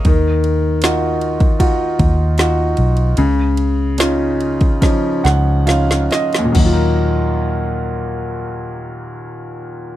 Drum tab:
CC |----------------|----------------|x---------------|
RD |x-x-x-xxx-x-x-xx|x-x-x-xxx-x-x-xx|----------------|
SD |----o-------o---|----o---o-o-oooo|----------------|
BD |o------oo-o-----|-------oo-------|o---------------|